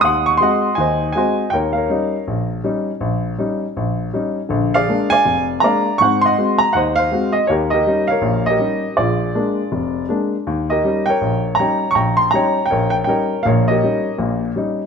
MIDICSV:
0, 0, Header, 1, 2, 480
1, 0, Start_track
1, 0, Tempo, 372208
1, 48, Time_signature, 4, 2, 24, 8
1, 19167, End_track
2, 0, Start_track
2, 0, Title_t, "Grand piano"
2, 0, Program_c, 0, 0
2, 0, Note_on_c, 0, 75, 59
2, 14, Note_on_c, 0, 87, 98
2, 46, Note_on_c, 0, 39, 67
2, 60, Note_on_c, 0, 78, 67
2, 66, Note_on_c, 0, 84, 69
2, 320, Note_off_c, 0, 87, 0
2, 336, Note_on_c, 0, 85, 90
2, 401, Note_off_c, 0, 85, 0
2, 462, Note_off_c, 0, 39, 0
2, 464, Note_off_c, 0, 84, 0
2, 483, Note_on_c, 0, 84, 89
2, 488, Note_off_c, 0, 75, 0
2, 518, Note_on_c, 0, 60, 47
2, 525, Note_on_c, 0, 56, 53
2, 526, Note_on_c, 0, 66, 56
2, 527, Note_off_c, 0, 78, 0
2, 543, Note_on_c, 0, 75, 62
2, 546, Note_on_c, 0, 78, 63
2, 852, Note_off_c, 0, 60, 0
2, 856, Note_off_c, 0, 56, 0
2, 856, Note_off_c, 0, 66, 0
2, 970, Note_on_c, 0, 80, 80
2, 1001, Note_off_c, 0, 84, 0
2, 1001, Note_on_c, 0, 39, 64
2, 1004, Note_on_c, 0, 51, 65
2, 1018, Note_off_c, 0, 75, 0
2, 1028, Note_on_c, 0, 72, 61
2, 1037, Note_on_c, 0, 75, 59
2, 1420, Note_off_c, 0, 39, 0
2, 1421, Note_off_c, 0, 51, 0
2, 1431, Note_off_c, 0, 80, 0
2, 1447, Note_off_c, 0, 78, 0
2, 1450, Note_on_c, 0, 80, 76
2, 1487, Note_on_c, 0, 56, 50
2, 1488, Note_off_c, 0, 75, 0
2, 1494, Note_off_c, 0, 72, 0
2, 1494, Note_on_c, 0, 60, 47
2, 1502, Note_on_c, 0, 66, 60
2, 1508, Note_on_c, 0, 75, 57
2, 1513, Note_on_c, 0, 72, 55
2, 1817, Note_off_c, 0, 56, 0
2, 1820, Note_off_c, 0, 60, 0
2, 1824, Note_off_c, 0, 66, 0
2, 1915, Note_off_c, 0, 80, 0
2, 1936, Note_on_c, 0, 79, 83
2, 1946, Note_off_c, 0, 75, 0
2, 1949, Note_off_c, 0, 72, 0
2, 1976, Note_on_c, 0, 39, 65
2, 1985, Note_on_c, 0, 70, 59
2, 1988, Note_on_c, 0, 73, 57
2, 2010, Note_off_c, 0, 79, 0
2, 2227, Note_on_c, 0, 77, 69
2, 2262, Note_off_c, 0, 70, 0
2, 2265, Note_off_c, 0, 73, 0
2, 2282, Note_on_c, 0, 70, 54
2, 2284, Note_on_c, 0, 73, 50
2, 2388, Note_off_c, 0, 39, 0
2, 2444, Note_on_c, 0, 61, 51
2, 2445, Note_on_c, 0, 55, 52
2, 2454, Note_on_c, 0, 63, 61
2, 2775, Note_off_c, 0, 61, 0
2, 2776, Note_off_c, 0, 55, 0
2, 2781, Note_off_c, 0, 63, 0
2, 2855, Note_off_c, 0, 77, 0
2, 2932, Note_on_c, 0, 34, 62
2, 3190, Note_off_c, 0, 70, 0
2, 3191, Note_off_c, 0, 73, 0
2, 3346, Note_off_c, 0, 34, 0
2, 3403, Note_on_c, 0, 55, 51
2, 3410, Note_on_c, 0, 61, 47
2, 3411, Note_on_c, 0, 63, 58
2, 3735, Note_off_c, 0, 55, 0
2, 3738, Note_off_c, 0, 61, 0
2, 3739, Note_off_c, 0, 63, 0
2, 3875, Note_on_c, 0, 34, 69
2, 4297, Note_off_c, 0, 34, 0
2, 4364, Note_on_c, 0, 55, 54
2, 4367, Note_on_c, 0, 61, 49
2, 4370, Note_on_c, 0, 63, 56
2, 4695, Note_off_c, 0, 55, 0
2, 4696, Note_off_c, 0, 61, 0
2, 4698, Note_off_c, 0, 63, 0
2, 4856, Note_on_c, 0, 34, 62
2, 5267, Note_off_c, 0, 34, 0
2, 5329, Note_on_c, 0, 55, 49
2, 5337, Note_on_c, 0, 61, 49
2, 5341, Note_on_c, 0, 63, 54
2, 5657, Note_off_c, 0, 55, 0
2, 5661, Note_off_c, 0, 61, 0
2, 5663, Note_off_c, 0, 63, 0
2, 5788, Note_on_c, 0, 50, 65
2, 5803, Note_on_c, 0, 34, 66
2, 6117, Note_on_c, 0, 77, 97
2, 6131, Note_on_c, 0, 74, 62
2, 6139, Note_on_c, 0, 68, 62
2, 6212, Note_off_c, 0, 50, 0
2, 6220, Note_off_c, 0, 34, 0
2, 6295, Note_on_c, 0, 56, 53
2, 6304, Note_on_c, 0, 58, 47
2, 6313, Note_on_c, 0, 62, 57
2, 6576, Note_on_c, 0, 80, 110
2, 6589, Note_off_c, 0, 74, 0
2, 6590, Note_off_c, 0, 77, 0
2, 6608, Note_on_c, 0, 74, 64
2, 6609, Note_on_c, 0, 77, 65
2, 6620, Note_off_c, 0, 56, 0
2, 6624, Note_off_c, 0, 58, 0
2, 6629, Note_off_c, 0, 62, 0
2, 6776, Note_on_c, 0, 29, 64
2, 7033, Note_off_c, 0, 80, 0
2, 7037, Note_off_c, 0, 68, 0
2, 7187, Note_off_c, 0, 29, 0
2, 7227, Note_on_c, 0, 82, 88
2, 7249, Note_off_c, 0, 77, 0
2, 7257, Note_off_c, 0, 74, 0
2, 7258, Note_on_c, 0, 56, 49
2, 7258, Note_on_c, 0, 58, 49
2, 7267, Note_on_c, 0, 62, 55
2, 7269, Note_on_c, 0, 77, 63
2, 7277, Note_on_c, 0, 74, 65
2, 7581, Note_off_c, 0, 56, 0
2, 7581, Note_off_c, 0, 58, 0
2, 7585, Note_off_c, 0, 62, 0
2, 7682, Note_off_c, 0, 82, 0
2, 7705, Note_off_c, 0, 77, 0
2, 7709, Note_off_c, 0, 74, 0
2, 7715, Note_on_c, 0, 85, 99
2, 7745, Note_on_c, 0, 44, 66
2, 7750, Note_on_c, 0, 60, 63
2, 7763, Note_on_c, 0, 78, 73
2, 8015, Note_on_c, 0, 84, 101
2, 8042, Note_off_c, 0, 85, 0
2, 8052, Note_off_c, 0, 78, 0
2, 8063, Note_on_c, 0, 75, 68
2, 8072, Note_on_c, 0, 78, 67
2, 8151, Note_off_c, 0, 44, 0
2, 8154, Note_off_c, 0, 60, 0
2, 8231, Note_on_c, 0, 56, 53
2, 8235, Note_on_c, 0, 60, 50
2, 8240, Note_on_c, 0, 66, 59
2, 8472, Note_off_c, 0, 84, 0
2, 8492, Note_on_c, 0, 82, 92
2, 8547, Note_off_c, 0, 56, 0
2, 8549, Note_off_c, 0, 60, 0
2, 8552, Note_off_c, 0, 66, 0
2, 8658, Note_off_c, 0, 78, 0
2, 8660, Note_off_c, 0, 82, 0
2, 8677, Note_on_c, 0, 78, 89
2, 8702, Note_on_c, 0, 39, 63
2, 8706, Note_off_c, 0, 75, 0
2, 8719, Note_on_c, 0, 72, 65
2, 8726, Note_on_c, 0, 75, 63
2, 8748, Note_off_c, 0, 78, 0
2, 8970, Note_on_c, 0, 77, 104
2, 8991, Note_off_c, 0, 72, 0
2, 9010, Note_on_c, 0, 72, 63
2, 9109, Note_off_c, 0, 39, 0
2, 9174, Note_on_c, 0, 56, 52
2, 9189, Note_on_c, 0, 60, 49
2, 9192, Note_on_c, 0, 66, 56
2, 9427, Note_off_c, 0, 75, 0
2, 9446, Note_on_c, 0, 75, 83
2, 9479, Note_off_c, 0, 77, 0
2, 9499, Note_off_c, 0, 56, 0
2, 9506, Note_off_c, 0, 60, 0
2, 9508, Note_off_c, 0, 66, 0
2, 9608, Note_off_c, 0, 72, 0
2, 9617, Note_off_c, 0, 75, 0
2, 9636, Note_on_c, 0, 73, 81
2, 9666, Note_on_c, 0, 39, 70
2, 9680, Note_on_c, 0, 67, 62
2, 9686, Note_on_c, 0, 70, 61
2, 9708, Note_off_c, 0, 73, 0
2, 9934, Note_on_c, 0, 75, 91
2, 9958, Note_off_c, 0, 67, 0
2, 9967, Note_off_c, 0, 70, 0
2, 9977, Note_on_c, 0, 67, 62
2, 9987, Note_on_c, 0, 70, 63
2, 10072, Note_off_c, 0, 39, 0
2, 10140, Note_on_c, 0, 55, 54
2, 10151, Note_on_c, 0, 61, 48
2, 10154, Note_on_c, 0, 63, 62
2, 10392, Note_off_c, 0, 75, 0
2, 10414, Note_on_c, 0, 77, 86
2, 10451, Note_off_c, 0, 70, 0
2, 10452, Note_on_c, 0, 73, 60
2, 10462, Note_off_c, 0, 55, 0
2, 10467, Note_off_c, 0, 61, 0
2, 10469, Note_off_c, 0, 63, 0
2, 10470, Note_on_c, 0, 70, 60
2, 10592, Note_on_c, 0, 34, 67
2, 10594, Note_on_c, 0, 46, 62
2, 10872, Note_off_c, 0, 77, 0
2, 10876, Note_off_c, 0, 67, 0
2, 10912, Note_on_c, 0, 75, 92
2, 10944, Note_off_c, 0, 70, 0
2, 10963, Note_on_c, 0, 70, 57
2, 10968, Note_on_c, 0, 67, 62
2, 11014, Note_off_c, 0, 34, 0
2, 11015, Note_off_c, 0, 46, 0
2, 11076, Note_on_c, 0, 55, 51
2, 11084, Note_on_c, 0, 61, 46
2, 11091, Note_on_c, 0, 63, 54
2, 11354, Note_off_c, 0, 73, 0
2, 11410, Note_off_c, 0, 55, 0
2, 11414, Note_off_c, 0, 61, 0
2, 11418, Note_off_c, 0, 63, 0
2, 11518, Note_off_c, 0, 75, 0
2, 11545, Note_off_c, 0, 70, 0
2, 11548, Note_off_c, 0, 67, 0
2, 11565, Note_on_c, 0, 74, 76
2, 11581, Note_on_c, 0, 34, 66
2, 11604, Note_on_c, 0, 68, 53
2, 11607, Note_on_c, 0, 65, 50
2, 11990, Note_off_c, 0, 34, 0
2, 12057, Note_on_c, 0, 56, 50
2, 12062, Note_on_c, 0, 62, 57
2, 12064, Note_on_c, 0, 58, 49
2, 12381, Note_off_c, 0, 56, 0
2, 12383, Note_off_c, 0, 62, 0
2, 12384, Note_off_c, 0, 58, 0
2, 12535, Note_on_c, 0, 29, 66
2, 12947, Note_off_c, 0, 29, 0
2, 12955, Note_off_c, 0, 74, 0
2, 12975, Note_off_c, 0, 68, 0
2, 12976, Note_off_c, 0, 65, 0
2, 13009, Note_on_c, 0, 56, 50
2, 13014, Note_on_c, 0, 58, 44
2, 13023, Note_on_c, 0, 62, 56
2, 13337, Note_off_c, 0, 56, 0
2, 13339, Note_off_c, 0, 58, 0
2, 13344, Note_off_c, 0, 62, 0
2, 13501, Note_on_c, 0, 39, 62
2, 13797, Note_on_c, 0, 75, 78
2, 13816, Note_on_c, 0, 70, 55
2, 13818, Note_on_c, 0, 67, 58
2, 13910, Note_off_c, 0, 39, 0
2, 13982, Note_on_c, 0, 55, 55
2, 13985, Note_on_c, 0, 63, 56
2, 13988, Note_on_c, 0, 61, 47
2, 14259, Note_on_c, 0, 79, 89
2, 14286, Note_off_c, 0, 70, 0
2, 14293, Note_off_c, 0, 75, 0
2, 14303, Note_off_c, 0, 55, 0
2, 14305, Note_off_c, 0, 63, 0
2, 14305, Note_on_c, 0, 70, 64
2, 14306, Note_off_c, 0, 61, 0
2, 14309, Note_on_c, 0, 73, 66
2, 14460, Note_on_c, 0, 34, 62
2, 14715, Note_off_c, 0, 79, 0
2, 14718, Note_off_c, 0, 67, 0
2, 14870, Note_off_c, 0, 34, 0
2, 14894, Note_on_c, 0, 82, 85
2, 14937, Note_off_c, 0, 73, 0
2, 14952, Note_on_c, 0, 55, 51
2, 14954, Note_on_c, 0, 79, 58
2, 14955, Note_on_c, 0, 61, 49
2, 14956, Note_on_c, 0, 73, 62
2, 14960, Note_on_c, 0, 63, 54
2, 15201, Note_off_c, 0, 70, 0
2, 15269, Note_off_c, 0, 55, 0
2, 15270, Note_off_c, 0, 61, 0
2, 15273, Note_off_c, 0, 63, 0
2, 15356, Note_off_c, 0, 82, 0
2, 15356, Note_on_c, 0, 85, 91
2, 15399, Note_off_c, 0, 79, 0
2, 15409, Note_on_c, 0, 34, 70
2, 15412, Note_on_c, 0, 82, 69
2, 15418, Note_on_c, 0, 79, 70
2, 15432, Note_off_c, 0, 85, 0
2, 15692, Note_on_c, 0, 84, 91
2, 15824, Note_off_c, 0, 34, 0
2, 15851, Note_off_c, 0, 73, 0
2, 15853, Note_off_c, 0, 82, 0
2, 15861, Note_off_c, 0, 84, 0
2, 15872, Note_on_c, 0, 82, 87
2, 15906, Note_on_c, 0, 55, 51
2, 15910, Note_off_c, 0, 79, 0
2, 15910, Note_on_c, 0, 63, 62
2, 15911, Note_on_c, 0, 61, 47
2, 15929, Note_on_c, 0, 73, 63
2, 15929, Note_on_c, 0, 79, 61
2, 16226, Note_off_c, 0, 55, 0
2, 16228, Note_off_c, 0, 61, 0
2, 16228, Note_off_c, 0, 63, 0
2, 16302, Note_off_c, 0, 79, 0
2, 16321, Note_on_c, 0, 79, 84
2, 16326, Note_off_c, 0, 82, 0
2, 16363, Note_off_c, 0, 73, 0
2, 16382, Note_on_c, 0, 73, 66
2, 16388, Note_on_c, 0, 70, 61
2, 16399, Note_on_c, 0, 34, 66
2, 16621, Note_off_c, 0, 79, 0
2, 16640, Note_on_c, 0, 79, 86
2, 16704, Note_off_c, 0, 79, 0
2, 16800, Note_off_c, 0, 34, 0
2, 16821, Note_on_c, 0, 79, 79
2, 16857, Note_off_c, 0, 70, 0
2, 16858, Note_on_c, 0, 55, 52
2, 16859, Note_on_c, 0, 61, 44
2, 16860, Note_on_c, 0, 63, 57
2, 16864, Note_off_c, 0, 73, 0
2, 16876, Note_on_c, 0, 70, 61
2, 16883, Note_on_c, 0, 73, 62
2, 17181, Note_off_c, 0, 55, 0
2, 17182, Note_off_c, 0, 61, 0
2, 17183, Note_off_c, 0, 63, 0
2, 17280, Note_off_c, 0, 79, 0
2, 17317, Note_on_c, 0, 77, 78
2, 17347, Note_on_c, 0, 46, 65
2, 17349, Note_off_c, 0, 73, 0
2, 17352, Note_off_c, 0, 70, 0
2, 17353, Note_on_c, 0, 34, 72
2, 17369, Note_on_c, 0, 73, 62
2, 17372, Note_on_c, 0, 70, 58
2, 17389, Note_off_c, 0, 77, 0
2, 17638, Note_on_c, 0, 75, 84
2, 17655, Note_off_c, 0, 70, 0
2, 17674, Note_on_c, 0, 70, 52
2, 17678, Note_on_c, 0, 67, 54
2, 17753, Note_off_c, 0, 46, 0
2, 17756, Note_off_c, 0, 34, 0
2, 17838, Note_on_c, 0, 55, 53
2, 17843, Note_on_c, 0, 61, 49
2, 17849, Note_on_c, 0, 63, 55
2, 18152, Note_off_c, 0, 55, 0
2, 18154, Note_off_c, 0, 61, 0
2, 18157, Note_off_c, 0, 63, 0
2, 18242, Note_off_c, 0, 75, 0
2, 18257, Note_off_c, 0, 73, 0
2, 18289, Note_on_c, 0, 46, 66
2, 18290, Note_on_c, 0, 34, 62
2, 18565, Note_off_c, 0, 70, 0
2, 18567, Note_off_c, 0, 67, 0
2, 18704, Note_off_c, 0, 34, 0
2, 18704, Note_off_c, 0, 46, 0
2, 18774, Note_on_c, 0, 55, 50
2, 18774, Note_on_c, 0, 61, 45
2, 18792, Note_on_c, 0, 63, 58
2, 19099, Note_off_c, 0, 55, 0
2, 19100, Note_off_c, 0, 61, 0
2, 19108, Note_off_c, 0, 63, 0
2, 19167, End_track
0, 0, End_of_file